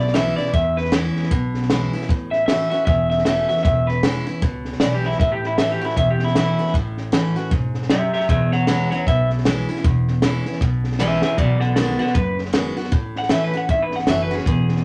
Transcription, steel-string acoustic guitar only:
Already playing: B2
0.14 E3 G#3 C#4 E4
0.38 C#4 E4
0.53 E2
0.92 E3 G#3 C#4 E4
1.31 B2
1.70 E3 G#3 C#4 E4
1.93 C#4 E4
2.10 A2
2.48 E3 A3 C#4 F#4
2.71 C#4 F#4
2.87 E2
3.26 E3 A3 C#4 F#4
3.49 C#4 F#4
3.65 E2
4.03 E3 G#3 C#4 E4
4.27 C#4 E4
4.42 B2
4.82 E3 G#3 C#4 E4
5.21 A2
5.58 E3 A3 C#4 F#4
5.81 C#4 F#4
5.97 E2
6.36 E3 A3 C#4 F#4
6.59 C#4 F#4
6.75 A2
7.12 E3 A3 C#4 F#4
7.36 C#4 F#4
7.51 G#2
7.90 F#2
8.29 E2
8.67 E3 G#3 C#4 E4
8.92 C#4 E4
9.08 B2
9.45 E3 G#3 C#4 E4
9.69 C#4 E4
9.84 E2
10.22 E3 G#3 C#4 E4
10.46 C#4 E4
10.62 B2
11.00 E3 G#3 C#4 E4
11.23 C#4 E4
11.38 B2
11.77 D#3 G#3 B3 F#4
11.99 B3 F#4
12.15 F#2
12.53 D#3 G#3 B3 F#4
12.77 B3 F#4
12.92 A2
13.29 E3 A3 C#4 F#4
13.54 C#4 F#4
13.69 E2
14.07 E3 A3 C#4 F#4
14.31 C#4 F#4
14.47 E2

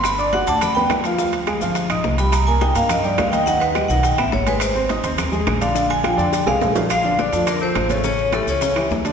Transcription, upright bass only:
Already playing: G1
0.47 D2
0.90 D2
1.61 G1
1.90 A#1
2.04 C2
2.75 G2
3.18 D#2
3.89 B1
4.18 A1
4.32 G#1
5.04 D#2
5.47 A#1
6.18 F2
6.47 C2
6.61 A#1
7.32 F2
7.75 A1
8.47 C#2
8.90 D2

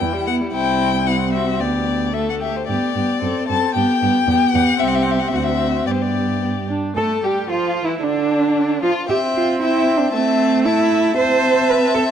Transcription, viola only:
0.00 E3
0.13 G3
0.27 B3
0.41 G3
0.54 C4
1.07 C4
1.61 B3
2.14 A3
2.68 B3
2.95 B3
3.21 C4
3.48 C4
3.75 B3
4.02 B3
4.27 B3
4.53 B3
4.78 C4
5.32 C4
5.86 B3
6.41 B3
6.68 D4
6.97 A3
7.24 G3
7.50 F3
7.84 E3
8.02 D3
8.82 F3
9.10 C4
10.13 A3
11.17 C4

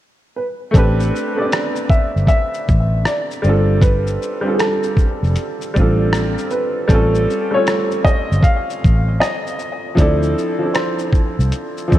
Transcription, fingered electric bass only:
0.75 A1
2.16 G1
2.69 A1
3.44 G1
5.23 F1
5.77 A1
6.90 A1
8.32 G1
8.85 A1
9.98 D2
11.39 C2
11.93 E2

